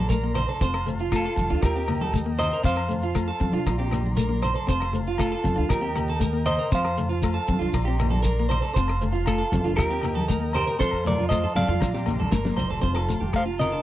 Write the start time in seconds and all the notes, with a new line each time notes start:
Already playing: A#1 D5 F5 A#5 C6
0.09 A3 A#4, kick, closed hi-hat, shekere
0.24 A#3
0.34 C5, cross-stick, closed hi-hat, low conga, low agogo, shekere
0.48 A4, closed hi-hat
0.60 F1 C4 C5 F5 A5, kick, closed hi-hat, shekere
0.74 cross-stick, low agogo
0.86 A3, closed hi-hat, low conga, shekere
0.99 F4, closed hi-hat
1.12 A3 F4 A4, kick, cross-stick, closed hi-hat, low agogo, shekere
1.25 A4
1.36 F1, muted clean electric guitar stroke, kick, closed hi-hat, high conga, shekere
1.50 D2 D4 F4, closed hi-hat
1.61 D#2 G4 D#5 G5 A#5, kick, cross-stick, closed hi-hat, low agogo, shekere
1.65 A#4
1.76 C4 G4
1.88 A#3, cross-stick, closed hi-hat, low conga, low agogo
2.01 A4, closed hi-hat, high conga
2.13 A3, kick, closed hi-hat, shekere
2.26 A#3
2.39 C5 D#5, cross-stick, closed hi-hat, low conga, low agogo, shekere
2.51 A#4, closed hi-hat
2.62 F2 C4 C5 F5 A5 C6, kick, closed hi-hat, shekere
2.76 cross-stick, low agogo
2.89 A3, closed hi-hat, low conga, shekere
3.02 F4, closed hi-hat
3.15 A3, kick, cross-stick, closed hi-hat, low agogo, shekere
3.28 A4
3.40 F2 C4, kick, closed hi-hat, high conga
3.52 C2 D4 F4, closed hi-hat
3.67 A#1 D5 A#5, kick, cross-stick, closed hi-hat, low agogo, shekere
3.79 C4 G4
3.91 A#3, cross-stick, closed hi-hat, low conga, low agogo, shekere
4.03 closed hi-hat, high conga
4.17 A3 A#4, kick, closed hi-hat, shekere
4.29 A#3, high conga
4.42 C5, cross-stick, closed hi-hat, low conga, low agogo, shekere
4.55 A4, closed hi-hat
4.67 F1 C4 C5 F5 A5, kick, closed hi-hat, shekere
4.80 cross-stick, low agogo
4.93 A3, closed hi-hat, low conga, shekere
5.07 F4, closed hi-hat
5.18 A3 F4 A4, kick, cross-stick, closed hi-hat, low agogo, shekere
5.32 A4
5.44 F1 C4, kick, closed hi-hat, high conga, low conga, shekere
5.56 D2 D4 F4, closed hi-hat
5.69 D#2 G4 A#4 D#5 G5 A#5, kick, cross-stick, closed hi-hat, low agogo, shekere
5.81 C4 G4
5.96 A#3, cross-stick, closed hi-hat, low conga, low agogo, shekere
6.08 A4, closed hi-hat
6.20 A3 A#4, kick, closed hi-hat, shekere
6.33 A#3
6.46 C5 D#5, cross-stick, closed hi-hat, low conga, low agogo, shekere
6.59 A#4, closed hi-hat
6.72 F2 C4 C5 F5 A5 C6, kick, closed hi-hat, shekere
6.85 cross-stick, low agogo
6.97 A3, closed hi-hat, low conga, shekere
7.09 F4, closed hi-hat
7.22 A3, kick, cross-stick, closed hi-hat, low agogo, shekere
7.34 A4
7.47 F2 C4, kick, closed hi-hat, high conga, shekere
7.59 C2 D4 F4, closed hi-hat
7.73 A#1 D5 A#5, kick, cross-stick, closed hi-hat, low agogo, shekere
7.85 C4 G4
7.98 A#3, cross-stick, closed hi-hat, low conga, low agogo, shekere
8.10 A4, closed hi-hat, high conga
8.23 A#4, kick, closed hi-hat, shekere
8.27 muted clean electric guitar stroke
8.40 A#3
8.49 C5, cross-stick, closed hi-hat, low conga, low agogo, shekere
8.62 A4, closed hi-hat
8.74 F1 C4 C5 F5 A5, kick, closed hi-hat, shekere
8.88 cross-stick, low agogo
9.01 A3, closed hi-hat, low conga, shekere
9.13 F4, closed hi-hat
9.26 A3 F4 A4, kick, cross-stick, closed hi-hat, low agogo, shekere
9.38 A4
9.52 F1 C4, kick, closed hi-hat, high conga, low conga, shekere
9.64 F1 D4 F4, closed hi-hat
9.76 D#2 G4 A#4 D#5 G5 A#5, kick, cross-stick, closed hi-hat, low agogo, shekere
9.90 C4 G4
10.01 A#3, cross-stick, closed hi-hat, low conga, low agogo, shekere
10.15 A4, closed hi-hat, high conga
10.28 A3 A#4, kick, closed hi-hat, shekere
10.40 A#3
10.53 G4 A#4 C5, cross-stick, closed hi-hat, low conga, low agogo, shekere
10.67 A#4, closed hi-hat
10.79 F2 C4 A4 C5 F5 A5 C6, kick, high tom, shekere
10.91 kick, low agogo
11.05 A3 A#4 D5, high tom, high conga, low conga, shekere
11.18 F4, high tom
11.29 A3 C5 D#5, kick, mid tom, low agogo, shekere
11.44 A4, mid tom
11.55 F2 C4 D5 F5, mid tom, high conga, low conga, shekere
11.68 F2 F4, mid tom
11.81 A#1 D5 A#5, kick, snare, high conga, low agogo, shekere
11.94 C4 G4, snare
12.06 A#3, mid tom, low conga, low agogo, shekere
12.20 A4, mid tom, high conga
12.31 G1 A3 A#4, kick, snare, shekere
12.45 A#3, snare, high conga
12.57 F1 C5, floor tom, low conga, low agogo, shekere
12.70 A4, floor tom
12.81 F1 C4 C5 F5 A5 C6, kick, shekere
12.95 A4, cross-stick, low agogo
13.09 A3, closed hi-hat, shekere
13.20 F1 G4, high conga
13.33 A3 F5, kick, cross-stick, low agogo, shekere
13.37 C5
13.45 F4
13.59 C4 A#4 D#5, closed hi-hat, low conga, shekere
13.72 D4 A4, shekere